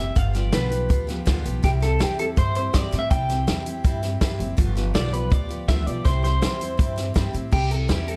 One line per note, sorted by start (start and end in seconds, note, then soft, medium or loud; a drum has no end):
0.00 0.14 F#1 medium
0.00 0.16 C4 soft
0.00 0.17 E4 medium
0.00 0.16 G4 soft
0.00 0.17 E5 loud
0.15 0.49 G1 medium
0.15 0.34 G2 medium
0.15 0.34 D3 medium
0.15 0.35 F3 medium
0.15 0.35 B3 medium
0.15 0.34 F4 medium
0.15 0.32 G4 medium
0.15 0.36 F5 loud
0.15 kick loud
0.15 closed hi-hat medium
0.33 0.52 F3 medium
0.33 0.52 B3 medium
0.33 0.53 F4 medium
0.33 0.53 G4 medium
0.33 0.54 D5 medium
0.33 snare soft
0.33 closed hi-hat medium
0.52 0.86 B1 medium
0.52 0.71 G2 medium
0.52 0.71 D3 medium
0.52 0.72 F3 medium
0.52 0.71 B3 medium
0.52 0.70 F4 medium
0.52 0.69 G4 medium
0.52 1.05 B4 medium
0.52 snare loud
0.52 closed hi-hat medium
0.70 0.88 F3 soft
0.70 0.89 B3 soft
0.70 0.90 F4 soft
0.70 0.89 G4 medium
0.70 closed hi-hat medium
0.89 1.23 D2 medium
0.89 1.08 F3 medium
0.89 1.08 B3 medium
0.89 1.07 F4 medium
0.89 1.06 G4 medium
0.89 kick loud
0.89 closed hi-hat medium
1.07 1.25 F3 medium
1.07 1.26 B3 medium
1.07 1.26 F4 medium
1.07 1.26 G4 medium
1.07 snare soft
1.07 closed hi-hat medium
1.25 1.43 D2 medium
1.25 1.45 G2 medium
1.25 1.45 D3 medium
1.25 1.45 F3 medium
1.25 1.45 B3 medium
1.25 1.44 F4 loud
1.25 1.43 G4 medium
1.25 kick medium
1.25 snare loud
1.25 closed hi-hat medium
1.44 1.62 B1 medium
1.44 1.63 F3 soft
1.44 1.63 B3 medium
1.44 1.64 F4 medium
1.44 1.63 G4 medium
1.44 closed hi-hat medium
1.63 1.96 C2 loud
1.63 1.82 C3 medium
1.63 1.82 G3 medium
1.63 1.82 C4 medium
1.63 1.81 E4 medium
1.63 1.69 G4 medium
1.63 1.79 G4 medium
1.63 kick loud
1.63 snare soft
1.63 closed hi-hat medium
1.80 2.00 C4 soft
1.80 2.00 E4 medium
1.80 2.00 G4 medium
1.80 2.01 A4 medium
1.80 snare soft
1.80 closed hi-hat medium
1.99 2.33 E2 medium
1.99 2.18 C3 medium
1.99 2.19 G3 medium
1.99 2.19 C4 medium
1.99 2.19 E4 medium
1.99 2.19 G4 medium
1.99 2.17 G4 loud
1.99 snare loud
1.99 closed hi-hat medium
2.18 2.36 C4 soft
2.18 2.37 E4 soft
2.18 2.37 G4 soft
2.18 2.24 A4 medium
2.18 closed hi-hat medium
2.36 2.70 G2 loud
2.36 2.55 G3 medium
2.36 2.56 C4 medium
2.36 2.55 E4 medium
2.36 2.54 G4 medium
2.36 2.55 C5 loud
2.36 kick loud
2.36 closed hi-hat medium
2.55 2.73 C4 soft
2.55 2.74 E4 medium
2.55 2.74 G4 medium
2.55 2.75 C5 medium
2.55 closed hi-hat medium
2.73 2.90 G2 medium
2.73 2.92 C3 medium
2.73 2.92 G3 medium
2.73 2.93 C4 medium
2.73 2.92 E4 medium
2.73 2.90 G4 loud
2.73 2.98 D5 medium
2.73 kick medium
2.73 snare loud
2.73 closed hi-hat loud
2.91 3.09 A2 medium
2.91 3.10 C4 soft
2.91 3.11 E4 soft
2.91 3.10 G4 medium
2.91 snare soft
2.91 closed hi-hat medium
2.99 3.10 E5 loud
3.10 3.44 C2 loud
3.10 3.29 C3 medium
3.10 3.29 G3 medium
3.10 3.30 C4 medium
3.10 3.30 E4 medium
3.10 3.28 G4 medium
3.10 4.36 G5 loud
3.10 kick loud
3.10 closed hi-hat medium
3.29 3.47 C4 medium
3.29 3.48 E4 soft
3.29 3.47 G4 medium
3.29 snare soft
3.29 closed hi-hat medium
3.47 3.81 E2 medium
3.47 3.66 C3 medium
3.47 3.66 G3 medium
3.47 3.66 C4 medium
3.47 3.66 E4 medium
3.47 3.65 G4 medium
3.47 snare loud
3.47 closed hi-hat medium
3.66 3.84 C4 soft
3.66 3.85 E4 medium
3.66 3.84 G4 medium
3.66 closed hi-hat medium
3.84 4.17 G2 medium
3.84 4.03 G3 medium
3.84 4.03 C4 medium
3.84 4.03 E4 medium
3.84 4.01 G4 medium
3.84 kick loud
3.84 closed hi-hat medium
4.02 4.21 C4 medium
4.02 4.21 E4 medium
4.02 4.21 G4 medium
4.02 snare soft
4.02 closed hi-hat medium
4.21 4.37 G2 medium
4.21 4.40 C3 medium
4.21 4.40 G3 medium
4.21 4.40 C4 medium
4.21 4.40 E4 loud
4.21 4.38 G4 loud
4.21 kick medium
4.21 snare loud
4.21 closed hi-hat medium
4.39 4.56 F#1 medium
4.39 4.58 C4 medium
4.39 4.58 E4 medium
4.39 4.58 G4 medium
4.39 closed hi-hat medium
4.57 4.91 G1 loud
4.57 4.76 G2 medium
4.57 4.76 D3 loud
4.57 4.76 F3 medium
4.57 4.76 B3 medium
4.57 4.75 F4 loud
4.57 4.74 G4 loud
4.57 kick loud
4.57 closed hi-hat medium
4.75 4.94 F3 medium
4.75 4.94 B3 medium
4.75 4.95 F4 medium
4.75 4.94 G4 medium
4.75 snare soft
4.75 closed hi-hat medium
4.94 5.28 B1 medium
4.94 5.13 G2 medium
4.94 5.13 D3 medium
4.94 5.13 F3 medium
4.94 5.13 B3 medium
4.94 5.12 F4 medium
4.94 5.10 G4 medium
4.94 5.13 D5 medium
4.94 snare loud
4.94 closed hi-hat medium
5.12 5.29 F3 soft
5.12 5.30 B3 soft
5.12 5.32 F4 medium
5.12 5.31 G4 soft
5.12 5.32 B4 medium
5.12 closed hi-hat medium
5.30 5.64 D2 medium
5.30 5.49 F3 medium
5.30 5.50 B3 medium
5.30 5.49 F4 medium
5.30 5.48 G4 medium
5.30 5.68 D5 loud
5.30 kick loud
5.30 closed hi-hat medium
5.49 5.68 F3 soft
5.49 5.69 B3 soft
5.49 5.69 F4 soft
5.49 5.68 G4 medium
5.49 closed hi-hat medium
5.68 5.85 D2 medium
5.68 5.87 G2 medium
5.68 5.87 D3 medium
5.68 5.87 F3 medium
5.68 5.87 B3 medium
5.68 5.86 F4 medium
5.68 5.85 G4 medium
5.68 5.87 E5 loud
5.68 kick medium
5.68 snare loud
5.68 closed hi-hat medium
5.86 6.03 B1 medium
5.86 6.05 F3 soft
5.86 6.05 B3 medium
5.86 6.06 F4 medium
5.86 6.05 G4 medium
5.86 6.04 D5 loud
5.86 closed hi-hat medium
6.04 6.38 C2 loud
6.04 6.23 C3 medium
6.04 6.23 G3 medium
6.04 6.24 C4 medium
6.04 6.23 E4 medium
6.04 6.21 G4 medium
6.04 6.23 C5 loud
6.04 kick loud
6.04 snare soft
6.04 closed hi-hat medium
6.23 6.42 C4 soft
6.23 6.42 E4 medium
6.23 6.41 G4 medium
6.23 7.30 C5 medium
6.23 snare soft
6.23 closed hi-hat medium
6.42 6.75 E2 medium
6.42 6.60 C3 medium
6.42 6.60 G3 medium
6.42 6.61 C4 medium
6.42 6.60 E4 medium
6.42 6.58 G4 loud
6.42 snare loud
6.42 closed hi-hat medium
6.60 6.78 C4 soft
6.60 6.79 E4 medium
6.60 6.78 G4 medium
6.60 closed hi-hat medium
6.77 7.11 G2 medium
6.77 6.96 G3 medium
6.77 6.97 C4 medium
6.77 6.96 E4 medium
6.77 6.95 G4 medium
6.77 kick loud
6.77 closed hi-hat medium
6.96 7.14 C4 soft
6.96 7.15 E4 medium
6.96 7.15 G4 medium
6.96 snare soft
6.96 closed hi-hat medium
7.14 7.32 G2 medium
7.14 7.33 C3 medium
7.14 7.34 G3 medium
7.14 7.34 C4 medium
7.14 7.34 E4 medium
7.14 7.32 G4 medium
7.14 kick medium
7.14 snare loud
7.14 closed hi-hat medium
7.33 7.50 A2 medium
7.33 7.51 C4 medium
7.33 7.52 E4 soft
7.33 7.52 G4 medium
7.33 closed hi-hat medium
7.51 7.85 C2 loud
7.51 7.70 C3 medium
7.51 7.71 G3 medium
7.51 7.71 C4 medium
7.51 7.70 E4 medium
7.51 7.71 G4 medium
7.51 7.69 G4 medium
7.51 kick loud
7.51 crash loud
7.70 7.88 C4 soft
7.70 7.89 E4 medium
7.70 7.89 G4 medium
7.70 7.90 A4 medium
7.70 closed hi-hat medium
7.88 8.16 E2 medium
7.88 8.07 C3 medium
7.88 8.07 G3 medium
7.88 8.08 C4 medium
7.88 8.07 E4 medium
7.88 8.08 G4 medium
7.88 8.05 G4 medium
7.88 snare loud
7.88 closed hi-hat medium
8.07 8.16 C4 soft
8.07 8.16 E4 soft
8.07 8.16 G4 medium
8.07 8.16 A4 medium
8.07 closed hi-hat medium